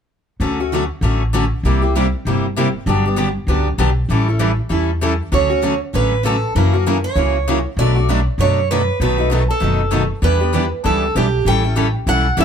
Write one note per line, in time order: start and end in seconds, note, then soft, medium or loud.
0.40 0.89 D2 medium
0.40 0.58 D3 medium
0.40 0.58 F#3 medium
0.40 0.58 A3 medium
0.40 0.58 C#4 medium
0.40 0.59 F#4 medium
0.40 0.60 A4 medium
0.60 0.73 A3 soft
0.60 0.72 C#4 soft
0.60 0.72 F#4 soft
0.73 0.83 D3 medium
0.73 0.83 F#3 medium
0.73 0.83 A3 medium
0.73 0.84 C#4 medium
0.73 0.83 F#4 medium
0.73 0.83 A4 medium
1.01 1.51 A1 medium
1.01 1.22 D3 medium
1.01 1.22 F#3 medium
1.01 1.22 A3 medium
1.01 1.22 C#4 medium
1.01 1.22 F#4 medium
1.01 1.22 A4 medium
1.33 1.43 D3 medium
1.33 1.44 F#3 medium
1.33 1.44 A3 medium
1.33 1.44 C#4 medium
1.33 1.44 F#4 medium
1.33 1.44 A4 medium
1.63 2.13 C2 medium
1.63 1.81 C3 medium
1.63 1.82 G3 medium
1.63 1.82 A#3 medium
1.63 1.82 E4 medium
1.63 1.81 G4 medium
1.82 1.95 A#3 soft
1.82 1.95 E4 soft
1.82 1.94 G4 soft
1.95 2.05 C3 medium
1.95 2.05 G3 medium
1.95 2.06 A#3 medium
1.95 2.06 E4 medium
1.95 2.06 G4 medium
2.25 2.74 G1 medium
2.25 2.45 C3 medium
2.25 2.45 G3 medium
2.25 2.45 A#3 medium
2.25 2.46 E4 medium
2.25 2.45 G4 medium
2.56 2.67 C3 medium
2.56 2.67 G3 medium
2.56 2.67 A#3 medium
2.56 2.67 E4 medium
2.56 2.68 G4 medium
2.86 3.35 G1 medium
2.86 3.04 D3 medium
2.86 3.04 F#3 medium
2.86 3.04 B3 medium
2.86 3.05 D4 medium
2.86 3.05 G4 medium
3.06 3.16 B3 soft
3.06 3.16 D4 soft
3.06 3.17 G4 soft
3.16 3.27 D3 medium
3.16 3.27 F#3 medium
3.16 3.27 B3 medium
3.16 3.28 D4 medium
3.16 3.28 G4 medium
3.47 3.73 C#2 medium
3.47 3.67 D3 medium
3.47 3.67 F#3 medium
3.47 3.67 B3 medium
3.47 3.68 D4 medium
3.47 3.68 G4 medium
3.78 4.04 B1 medium
3.78 3.89 D3 medium
3.78 3.89 F#3 medium
3.78 3.89 B3 medium
3.78 3.89 D4 medium
3.78 3.89 G4 medium
4.09 4.58 A1 medium
4.09 4.27 E3 medium
4.09 4.27 G3 medium
4.09 4.27 C#4 medium
4.09 4.27 E4 medium
4.09 4.27 A4 medium
4.28 4.38 C#4 soft
4.28 4.39 E4 soft
4.28 4.39 A4 soft
4.39 4.50 E3 medium
4.39 4.50 G3 medium
4.39 4.50 C#4 medium
4.39 4.50 E4 medium
4.39 4.51 A4 medium
4.69 5.19 E2 medium
4.69 4.89 E3 medium
4.69 4.89 G3 medium
4.69 4.90 C#4 medium
4.69 4.90 E4 medium
4.69 4.90 A4 medium
5.01 5.12 E3 medium
5.01 5.12 G3 medium
5.01 5.12 C#4 medium
5.01 5.12 E4 medium
5.01 5.13 A4 medium
5.32 5.81 D2 medium
5.32 5.49 D3 medium
5.32 5.49 F#3 medium
5.32 5.49 A3 medium
5.32 5.50 C#4 medium
5.32 5.48 F#4 medium
5.32 5.52 A4 medium
5.32 5.78 C#5 medium
5.50 5.62 A3 soft
5.50 5.63 C#4 soft
5.50 5.62 F#4 soft
5.63 5.73 D3 medium
5.63 5.73 F#3 medium
5.63 5.73 A3 medium
5.63 5.74 C#4 medium
5.63 5.74 F#4 medium
5.63 5.73 A4 medium
5.94 6.43 A1 medium
5.94 6.13 D3 medium
5.94 6.13 F#3 medium
5.94 6.13 A3 medium
5.94 6.14 C#4 medium
5.94 6.14 F#4 medium
5.94 6.13 A4 medium
5.94 6.25 B4 medium
6.24 6.35 D3 medium
6.24 6.35 F#3 medium
6.24 6.35 A3 medium
6.24 6.36 C#4 medium
6.24 6.36 F#4 medium
6.24 6.35 A4 medium
6.24 6.55 A4 medium
6.55 7.04 F#2 medium
6.55 6.72 C#3 medium
6.55 6.73 E3 medium
6.55 6.74 F#3 medium
6.55 6.73 A#3 medium
6.55 6.73 C#4 medium
6.55 6.75 E4 medium
6.55 6.72 F#4 medium
6.55 6.84 A#4 medium
6.55 6.75 A#4 medium
6.73 6.85 A#3 soft
6.73 6.86 C#4 soft
6.73 6.85 F#4 soft
6.86 6.96 C#3 medium
6.86 6.96 E3 medium
6.86 6.97 F#3 medium
6.86 6.97 A#3 medium
6.86 6.97 C#4 medium
6.86 6.97 E4 medium
6.86 6.97 F#4 medium
6.86 6.97 A#4 medium
7.04 7.61 C#5 medium
7.15 7.65 C#2 medium
7.15 7.35 C#3 medium
7.15 7.35 E3 medium
7.15 7.36 F#3 medium
7.15 7.36 A#3 medium
7.15 7.36 C#4 medium
7.15 7.36 E4 medium
7.15 7.36 F#4 medium
7.15 7.37 A#4 medium
7.48 7.58 C#3 medium
7.48 7.58 E3 medium
7.48 7.58 F#3 medium
7.48 7.58 A#3 medium
7.48 7.58 C#4 medium
7.48 7.58 E4 medium
7.48 7.58 F#4 medium
7.48 7.59 A#4 medium
7.77 8.26 B1 medium
7.77 7.95 B2 medium
7.77 7.95 F#3 medium
7.77 7.95 A3 medium
7.77 7.96 D4 medium
7.77 7.95 F#4 medium
7.77 7.98 B4 medium
7.77 8.23 D5 medium
7.96 8.09 A3 soft
7.96 8.08 D4 soft
7.96 8.08 F#4 soft
8.09 8.19 B2 medium
8.09 8.19 F#3 medium
8.09 8.20 A3 medium
8.09 8.19 D4 medium
8.09 8.20 F#4 medium
8.09 8.20 B4 medium
8.38 8.87 F#2 medium
8.38 8.59 B2 medium
8.38 8.59 F#3 medium
8.38 8.59 A3 medium
8.38 8.59 D4 medium
8.38 8.59 B4 medium
8.38 8.68 C#5 medium
8.42 8.60 F#4 medium
8.71 8.80 B2 medium
8.71 8.81 F#3 medium
8.71 8.81 A3 medium
8.71 8.81 D4 medium
8.71 8.81 F#4 medium
8.71 8.99 B4 medium
8.71 8.81 B4 medium
9.00 9.49 B1 medium
9.00 9.18 B2 medium
9.00 9.20 D#3 medium
9.00 9.17 F#3 medium
9.00 9.18 A3 medium
9.00 9.20 B3 medium
9.00 9.18 D#4 medium
9.00 9.17 F#4 medium
9.00 9.20 A4 medium
9.00 9.29 B4 medium
9.18 9.30 A3 soft
9.18 9.30 D#4 soft
9.18 9.30 F#4 soft
9.30 9.41 B2 medium
9.30 9.42 D#3 medium
9.30 9.41 F#3 medium
9.30 9.42 A3 medium
9.30 9.42 B3 medium
9.30 9.41 D#4 medium
9.30 9.42 F#4 medium
9.30 9.42 A4 medium
9.51 10.07 A4 medium
9.60 10.10 F#1 medium
9.60 9.80 B2 medium
9.60 9.81 D#3 medium
9.60 9.80 F#3 medium
9.60 9.80 A3 medium
9.60 9.82 B3 medium
9.60 9.81 D#4 medium
9.60 9.81 F#4 medium
9.60 9.82 A4 medium
9.91 10.02 B2 medium
9.91 10.02 D#3 medium
9.91 10.02 F#3 medium
9.91 10.02 A3 medium
9.91 10.03 B3 medium
9.91 10.02 D#4 medium
9.91 10.03 F#4 medium
9.91 10.03 A4 medium
10.22 10.71 E2 medium
10.22 10.39 E3 medium
10.22 10.43 G3 medium
10.22 10.40 B3 medium
10.22 10.40 D4 medium
10.22 10.43 E4 medium
10.22 10.40 G4 medium
10.22 10.68 B4 medium
10.22 10.43 B4 medium
10.41 10.52 B3 soft
10.41 10.52 D4 soft
10.41 10.53 G4 soft
10.53 10.63 E3 medium
10.53 10.64 G3 medium
10.53 10.64 B3 medium
10.53 10.64 D4 medium
10.53 10.65 E4 medium
10.53 10.64 G4 medium
10.53 10.65 B4 medium
10.84 11.10 C#2 medium
10.84 11.03 E3 medium
10.84 11.04 G3 medium
10.84 11.03 B3 medium
10.84 11.03 D4 medium
10.84 11.04 E4 medium
10.84 11.04 G4 medium
10.84 11.16 A4 medium
10.84 11.04 B4 medium
11.15 11.41 B1 medium
11.15 11.25 E3 medium
11.15 11.26 G3 medium
11.15 11.25 B3 medium
11.15 11.26 D4 medium
11.15 11.26 E4 medium
11.15 11.26 G4 medium
11.15 11.47 G4 medium
11.15 11.26 B4 medium
11.45 11.94 A1 medium
11.45 11.63 E3 medium
11.45 11.63 G3 medium
11.45 11.63 C#4 medium
11.45 11.63 E4 medium
11.45 11.63 A4 medium
11.45 11.91 G5 medium
11.64 11.75 C#4 soft
11.64 11.75 E4 soft
11.64 11.76 A4 soft
11.76 11.86 E3 medium
11.76 11.86 G3 medium
11.76 11.86 C#4 medium
11.76 11.87 E4 medium
11.76 11.87 A4 medium
12.07 12.32 B1 medium
12.07 12.26 E3 medium
12.07 12.26 G3 medium
12.07 12.26 C#4 medium
12.07 12.26 E4 medium
12.07 12.27 A4 medium
12.07 12.39 F#5 medium
12.37 12.45 C#2 medium
12.37 12.45 E3 medium
12.37 12.45 G3 medium
12.37 12.45 C#4 medium
12.37 12.45 E4 medium
12.37 12.45 A4 medium
12.37 12.45 E5 medium